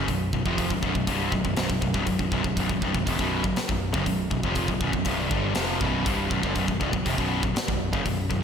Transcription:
0.08 B0 B1 F#2, kick, open hi-hat
0.33 B0 B1 F#2, kick
0.45 F1 F2 C3 F3, kick
0.58 kick, open hi-hat
0.70 B0 B1 F#2, kick
0.83 B0 B1 F#2, kick
0.95 B0 B1 F#2, kick
1.07 C1 C2 G2 C3, kick, open hi-hat
1.32 B0 B1 F#2, kick
1.44 B0 B1 F#2, kick
1.56 B0 B1 F#2, snare, open hi-hat
1.70 B0 B1 F#2, kick
1.81 B0 B1 F#2, kick
1.94 C1 C2 G2, kick
2.06 B0 B1 F#2, kick, open hi-hat
2.19 B0 B1 F#2, kick
2.31 B0 B1 F#2, kick
2.44 B0 B1 F#2, kick
2.56 B0 B1 F#2, kick, open hi-hat
2.69 B0 B1 F#2, kick
2.81 C1 C2 G2, kick
2.93 B0 B1 F#2, kick
3.06 F1 F2 C3, kick, open hi-hat
3.18 B0 B1 F#2 B2, kick
3.44 B0 B1 F#2, kick
3.56 muted distorted electric guitar stroke, muted picked electric bass stroke, snare, open hi-hat
3.69 B0 B1 F#2, kick
3.94 F#1 F#2 C#3, kick
4.06 B0 B1 F#2, kick, open hi-hat
4.31 B0 B1 F#2, kick
4.43 F1 F2 C3 F3, kick
4.55 kick, open hi-hat
4.68 B0 B1 F#2, kick
4.81 B0 B1 F#2, kick
4.93 B0 B1 F#2, kick
5.05 C1 C2 G2 C3, kick, open hi-hat
5.31 G1 G2 D3 G3, kick
5.55 F1 F2 C3 F3, snare, open hi-hat
5.81 B0 B1 F#2 B2, kick
6.05 C1 C2 G2 C3, kick, open hi-hat
6.31 B0 B1 F#2, kick
6.43 G1 G2 D3, kick
6.56 B0 B1 F#2, kick, open hi-hat
6.68 B0 B1 F#2, kick
6.81 C1 C2 G2, kick
6.93 B0 B1 F#2, kick
7.05 F1 F2 C3, kick, open hi-hat
7.17 B0 B1 F#2 B2, kick
7.43 B0 B1 F#2, kick
7.55 muted distorted electric guitar stroke, muted picked electric bass stroke, snare, open hi-hat
7.68 B0 B1 F#2, kick
7.92 F#1 F#2 C#3, kick
8.05 B0 B1 F#2, kick, open hi-hat
8.30 B0 B1 F#2, kick

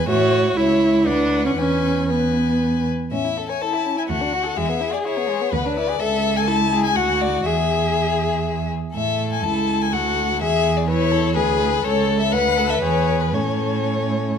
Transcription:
0.08 A2 F#4 C#5 E5
0.57 C#2 E4 C#5 E5
1.06 D2 D4 B4 F#5
1.46 C#4
1.58 E2 C#4 B4 G#5
2.09 B3 B4 G#5
3.12 A2 C#4 E5
3.24 E4
3.37 A4
3.49 C#5 G#5
3.61 E4 A4 A5
3.73 E4
3.86 C#4
3.96 E4 G#5
4.09 D2 A3 F#4 F#5
4.21 D4
4.33 F#4
4.45 A4
4.57 E2 G#3 G#4 E5
4.69 B3
4.80 E4
4.93 G#4 D5
5.04 E4 C#5
5.17 B3
5.29 G#3
5.41 B3
5.53 D2 B3 B4
5.65 D4
5.76 E4 D5
5.88 G#4
6.00 C#2 A4 E5
6.36 G#5
6.47 E4 A4 A5
6.72 G#4
6.84 G#5
6.96 D2 F#4 F#5
7.21 D5
7.46 E2 G#4 E5
8.95 A2 A4 E5
9.32 G#5
9.44 C#2 E4 A5
9.81 G#5
9.93 D2 F#4 A4 F#5
10.41 E2 G#4 E5
10.77 D5
10.87 E4 B4 C#5
11.12 A4
11.35 D2 G#4 B4
11.84 C#2 A4 C#5
12.20 E5
12.32 D2 B4 F#5
12.57 A4
12.70 E5
12.82 E2 G#4 C#5
13.21 B4
13.34 A2 C#4 A4 C#5

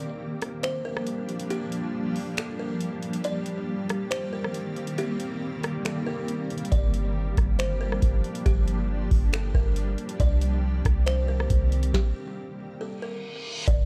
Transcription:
Already playing: F3 G3 A#3 D4 G4 D5
0.42 cross-stick, closed hi-hat
0.63 C5, finger snap, closed hi-hat
0.85 A#4
0.97 cross-stick
1.07 closed hi-hat
1.29 closed hi-hat
1.40 closed hi-hat
1.50 G4, closed hi-hat
1.72 closed hi-hat
2.16 open hi-hat
2.37 A4, finger snap, closed hi-hat
2.59 A#4
2.81 closed hi-hat
3.03 closed hi-hat
3.13 closed hi-hat
3.24 D#3 A#3 C4 D5, closed hi-hat
3.46 closed hi-hat
3.89 cross-stick, closed hi-hat
4.11 C5, finger snap, closed hi-hat
4.33 A#4
4.44 cross-stick
4.54 closed hi-hat
4.76 closed hi-hat
4.87 closed hi-hat
4.98 G4, closed hi-hat
5.20 closed hi-hat
5.63 cross-stick, closed hi-hat
5.85 A4, finger snap, closed hi-hat
6.07 A#4
6.28 closed hi-hat
6.50 closed hi-hat
6.58 closed hi-hat
6.65 closed hi-hat
6.72 G1 F3 D4 D5, kick, closed hi-hat
6.94 closed hi-hat
7.37 G1, kick, cross-stick, closed hi-hat
7.59 C5, finger snap, closed hi-hat
7.81 A#4
7.92 cross-stick
8.02 G1, kick, closed hi-hat
8.24 closed hi-hat
8.35 closed hi-hat
8.46 G1 G4, kick, closed hi-hat
8.68 closed hi-hat
9.11 G1, kick, open hi-hat
9.33 A4, finger snap, closed hi-hat
9.54 G1 A#4, kick
9.76 closed hi-hat
9.98 closed hi-hat
10.09 closed hi-hat
10.20 C2 D#3 G3 C4 G4 D5, kick, closed hi-hat
10.41 closed hi-hat
10.85 C2, kick, cross-stick, closed hi-hat
11.06 C5, finger snap, closed hi-hat
11.28 A#4
11.40 cross-stick
11.50 C2, kick, closed hi-hat
11.72 closed hi-hat
11.83 closed hi-hat
11.94 G4, kick, snare
12.81 A4, reverse cymbal
13.02 A#4
13.68 G1 D5, kick, closed hi-hat

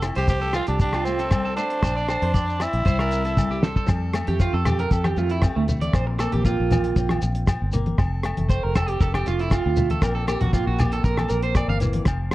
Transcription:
Already playing: F1 F3 A3 C4 C5
0.02 E4, cross-stick, closed hi-hat, low agogo, shekere
0.15 C2 G4 C5, closed hi-hat
0.28 C4 G4, kick, closed hi-hat, shekere
0.41 A4, shekere
0.53 C4 F4, cross-stick, closed hi-hat, low agogo, shekere
0.67 C2 D4 G4, closed hi-hat, shekere
0.79 D4 G4, kick, closed hi-hat, shekere
0.93 F4, cross-stick, low agogo
1.05 A3 C4, closed hi-hat, shekere
1.19 A4, closed hi-hat, shekere
1.31 G3, kick, cross-stick, closed hi-hat, low agogo, shekere
1.45 A4
1.56 A3 D4 C5, closed hi-hat, shekere
1.70 closed hi-hat
1.82 A#1 C5, muted steel-string acoustic guitar stroke, kick, cross-stick, closed hi-hat, low agogo, shekere
1.96 D5, shekere
2.08 A4 C5, cross-stick, closed hi-hat, low agogo, shekere
2.22 F2 C5, closed hi-hat
2.34 C4 D5, kick, closed hi-hat, shekere
2.49 shekere
2.60 C4 E4, cross-stick, closed hi-hat, low agogo, shekere
2.73 A#1, closed hi-hat
2.85 C2 C3 G3 C5, kick, closed hi-hat, shekere
2.99 A#4, cross-stick, low agogo, shekere
3.11 G3, closed hi-hat, shekere
3.25 A4, closed hi-hat, shekere
3.37 G3, kick, high tom, low agogo, shekere
3.51 G4, shekere
3.63 A4 C5, snare, shekere
3.76 A4, kick, shekere
3.86 F2 F3 A4, kick, cross-stick, closed hi-hat, low agogo, shekere
4.13 A3, cross-stick, closed hi-hat, low agogo, shekere
4.27 F2 G4, closed hi-hat, high conga
4.40 C4 F4, kick, closed hi-hat, shekere
4.53 F2 A4
4.65 C4 G4, cross-stick, closed hi-hat, high conga, low conga, low agogo, shekere
4.79 A#4, closed hi-hat
4.91 F2 G4 A4, kick, closed hi-hat, shekere
5.04 G4, cross-stick, high conga, low agogo
5.16 F2 A3 F4, closed hi-hat, shekere
5.30 E4, closed hi-hat
5.42 C4, kick, cross-stick, closed hi-hat, low agogo, shekere
5.56 D2 A3
5.68 A3, closed hi-hat, low conga, shekere
5.81 D5, closed hi-hat, high conga
5.93 A#1 A#2 F4 C5, kick, cross-stick, closed hi-hat, low agogo, shekere
6.07 muted clean electric guitar stroke
6.19 A#3 A4, cross-stick, closed hi-hat, low agogo, shekere
6.32 A#1 G4, closed hi-hat, high conga
6.45 C4 F4, kick, closed hi-hat, shekere
6.60 A#1
6.71 C4, closed hi-hat, high conga, low conga, low agogo, shekere
6.84 closed hi-hat
6.96 A#1 C4, kick, closed hi-hat, shekere
7.09 cross-stick, high conga, low agogo
7.22 A#1, closed hi-hat, shekere
7.35 closed hi-hat
7.47 C4, kick, cross-stick, closed hi-hat, low agogo, shekere
7.62 G1
7.72 A#3, closed hi-hat, low conga, shekere
7.86 closed hi-hat, high conga
7.98 F1 A4, muted steel-string acoustic guitar stroke, kick, cross-stick, closed hi-hat, low agogo, shekere
8.23 A3, cross-stick, closed hi-hat, low agogo
8.37 F1, closed hi-hat, high conga
8.49 C4 C5, kick, closed hi-hat, shekere
8.63 F1 A#4
8.75 G4 A4, cross-stick, closed hi-hat, high conga, low conga, low agogo, shekere
8.88 G4, closed hi-hat
9.01 F1 G4 A4, kick, closed hi-hat, shekere
9.14 G4, cross-stick, high conga, low agogo
9.26 F1 A3 F4, closed hi-hat, shekere
9.39 E4, closed hi-hat
9.50 F4, muted steel-string acoustic guitar stroke, kick, cross-stick, closed hi-hat, low agogo, shekere
9.66 D2
9.76 A3, closed hi-hat, low conga, shekere
9.90 A4, closed hi-hat, high conga
10.02 A#1 A#2 A#3 C4 F4 A#4, kick, cross-stick, closed hi-hat, low agogo, shekere
10.15 A4
10.27 A#3 G4, cross-stick, closed hi-hat, low agogo, shekere
10.41 A#1 F#4, closed hi-hat, high conga, low conga
10.53 C4 F4, kick, closed hi-hat, shekere
10.67 A#1 F#4
10.78 F4 G4, closed hi-hat, high conga, low conga, low agogo, shekere
10.92 A4, closed hi-hat
11.03 A#1 F4 A#4, kick, closed hi-hat, shekere
11.17 A4, cross-stick, high conga, low agogo
11.28 A#1 A#3 A#4, closed hi-hat, shekere
11.42 C5, closed hi-hat
11.55 D5, kick, cross-stick, closed hi-hat, low agogo, shekere
11.68 G1 F5, high conga
11.80 E3, closed hi-hat, low conga, shekere
11.93 closed hi-hat, high conga
12.05 F1 F3, muted steel-string acoustic guitar stroke, kick, cross-stick, closed hi-hat, low agogo, shekere
12.31 A3, cross-stick, closed hi-hat

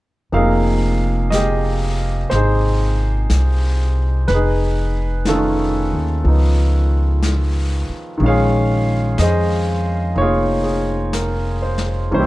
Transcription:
0.32 F1 C3 F3 A#3 D#4 A#4 F5, brush sweep
0.36 G#4
1.30 G4 D#5, brush sweep, snare, hi-hat pedal
1.35 G#4
2.30 G#1 C5, brush sweep, snare
2.35 D#4 G#4
3.30 C2, brush sweep, snare, hi-hat pedal
4.28 F1 B4, brush sweep, snare
4.34 D#4 G#4
5.25 D#3 A3 C#4 F4 A4, brush sweep, snare, hi-hat pedal
5.34 C#4 D#4
5.93 D#2
6.24 C#2 F3 B3 D#4, brush sweep
7.22 brush sweep, snare, hi-hat pedal
7.89 muted upright bass stroke
8.18 A#1 D#3 G#3 C#4, brush sweep
8.24 F4 F5
8.28 G#4 C#5
9.18 F2 G#4 C5 D#5, brush sweep, snare, hi-hat pedal
10.15 F1 A#3 D#4 F4 C#5, brush sweep
10.21 F4 G#4
10.63 G#4
11.13 A#4, brush sweep, snare, hi-hat pedal
11.62 C5
11.78 snare
12.11 C2 E3 G3 A#3 C#4 C5, brush sweep
12.19 E4 G4

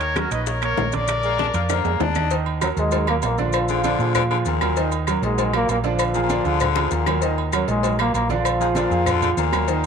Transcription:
Already playing: D#2 D#3 D#4 A#4 C#5
0.01 high bongo, high conga, high timbale, maracas
0.16 F#3 F#4 A#4, high bongo, high conga, high timbale, claves, maracas
0.31 A#1 D#4 B4 D#5, high timbale, maracas
0.46 A#4 C#5, high bongo, high conga, maracas
0.62 A#3 A#4 C#5, high bongo, high conga, high timbale, claves, maracas
0.77 A#1, high bongo, low bongo, high conga, low timbale, maracas
0.92 D3 D4 A#4 D5, high bongo, high conga, high timbale, maracas
1.08 high bongo, high conga, high timbale, claves, maracas
1.23 G#3 A#3 G#4, high bongo, high conga, maracas
1.39 D4, high bongo, high conga, high timbale, maracas
1.54 F2 F3 A#3 F4, high conga, high timbale, maracas
1.69 D3 A#3 D4, high bongo, high conga, high timbale, claves, maracas
1.84 F2 G#3 G#4, high bongo, high conga, low timbale, maracas
2.00 D#2 D4, high bongo, low bongo, high conga, low timbale, maracas
2.15 D#4 D#5, high bongo, high conga, low timbale, claves, maracas
2.30 D#3 D#4 D#5, cowbell, high conga, maracas
2.46 high conga, low agogo
2.61 F#2 F#3 F#4 A#4, cowbell, high conga, low agogo, claves, maracas
2.77 D#2 G#2 G#3, cowbell, maracas
2.91 F#3 F#4 A#4, cowbell, high conga, low agogo, maracas
3.07 A#2 F#3 A#3 F#4 A#4, cowbell, high conga, low agogo, claves
3.22 A#1 A#2 A#3, cowbell, high conga, low timbale, low agogo, maracas
3.38 D3 F3 D4 F4 D5, cowbell, high conga, maracas
3.53 cowbell, low agogo, claves, maracas
3.68 D3 F3 F4 G#4, high conga, maracas
3.84 D3 D4 D5, cowbell, high conga, low agogo, maracas
3.99 A#2 F3 F4 G#4, high conga, maracas
4.15 D3, cowbell, high conga, low conga, low agogo, claves, maracas
4.30 D3 F3 F4 G#4, low agogo
4.45 D#2 A#2, cowbell, high conga, maracas
4.61 F#3 F#4 A#4, cowbell, high conga, low agogo, claves, maracas
4.76 D#3 D#4 D#5, cowbell, high conga, maracas
4.92 high conga, low agogo, maracas
5.07 F#2 F#3 F#4 A#4, cowbell, high conga, low agogo, claves, maracas
5.22 A#1 G#2 G#3, cowbell, high conga, maracas
5.38 F#3 F#4 A#4, cowbell, high conga, low agogo, maracas
5.53 A#2 F#3 A#3 F#4 A#4, cowbell, low agogo, claves
5.68 A#1 A#2 A#3, cowbell, high conga, low agogo, maracas
5.84 D3 F3 D4 F4 D5, cowbell, maracas
5.99 cowbell, high conga, low agogo, claves, maracas
6.14 A#2 F3 F4 G#4, high conga, maracas
6.23 A#2
6.29 D3 D4 D5, cowbell, high conga, low agogo, maracas
6.44 D2 D3 F3 F4 G#4, high conga, maracas
6.60 D3, cowbell, high conga, low conga, low agogo, claves, maracas
6.76 F3 F4 G#4, high bongo, high conga, low agogo
6.91 D#2 A#2, cowbell, high conga, maracas
7.06 F#3 F#4 A#4, cowbell, low bongo, high conga, low agogo, claves, maracas
7.22 D#3 D#4 D#5, cowbell, high conga, maracas
7.38 high conga, low agogo
7.52 F#2 F#3 F#4 A#4, cowbell, high conga, low agogo, claves, maracas
7.68 A#1 G#2 G#3, cowbell, high conga, maracas
7.83 F#3 F#4 A#4, cowbell, low agogo, maracas
7.99 A#2 F#3 A#3 F#4 A#4, cowbell, high conga, low agogo, claves
8.14 A#1 A#2 A#3, cowbell, high conga, low agogo, maracas
8.28 D3 F3 D4 F4 D5, cowbell, high conga, maracas
8.45 cowbell, high conga, low agogo, claves, maracas
8.60 G#2 F3 F4 G#4, high conga, maracas
8.75 A#2 D3 D4 D5, cowbell, high conga, low agogo, maracas
8.90 F2 F3 F4 G#4, high conga, maracas
9.06 D3, cowbell, high conga, low conga, low agogo, claves, maracas
9.21 D3 F3 F4 G#4, high conga, low conga, low agogo, maracas
9.37 D#2 A#2, cowbell, high conga, maracas
9.52 F#3 F#4 A#4, cowbell, high conga, low agogo, claves, maracas
9.68 D#3 D#4 D#5, cowbell, high conga, maracas

